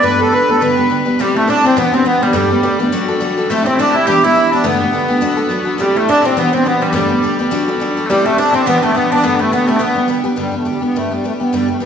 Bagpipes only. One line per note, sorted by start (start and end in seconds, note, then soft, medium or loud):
0.03 0.29 B4 medium
0.29 0.57 B4 medium
0.29 0.32 D5 medium
0.57 1.21 B4 medium
0.57 0.61 D5 medium
1.21 1.37 G3 medium
1.37 1.49 A3 medium
1.49 1.78 D4 medium
1.78 1.94 B3 medium
1.94 2.07 C4 medium
2.07 2.23 B3 medium
2.23 2.33 G3 medium
2.33 3.50 G3 medium
2.33 2.37 A3 medium
3.50 3.66 A3 medium
3.66 3.75 C4 medium
3.75 3.90 D4 medium
3.75 3.79 E4 medium
3.90 4.06 E4 medium
3.90 3.94 G4 medium
4.06 4.24 G4 medium
4.24 4.52 E4 medium
4.52 4.65 D4 medium
4.65 5.81 B3 medium
5.81 5.97 G3 medium
5.97 6.10 A3 medium
6.10 6.22 D4 medium
6.22 6.38 C4 medium
6.22 6.25 E4 medium
6.38 6.54 B3 medium
6.54 6.64 C4 medium
6.64 6.82 B3 medium
6.64 6.68 D4 medium
6.82 6.91 G3 medium
6.91 6.95 A3 medium
6.95 8.06 G3 medium
8.06 8.10 A3 medium
8.10 8.26 G3 medium
8.26 8.39 A3 medium
8.39 8.51 D4 medium
8.51 8.63 C4 medium
8.51 8.55 E4 medium
8.63 8.67 D4 medium
8.67 8.78 B3 medium
8.78 8.82 D4 medium
8.82 8.92 A3 medium
8.92 8.96 D4 medium
8.96 9.11 B3 medium
9.11 9.24 D4 medium
9.24 9.35 B3 medium
9.35 9.40 D4 medium
9.40 9.52 A3 medium
9.52 9.67 B3 medium
9.67 9.77 A3 medium
9.77 10.07 B3 medium
9.77 9.80 D4 medium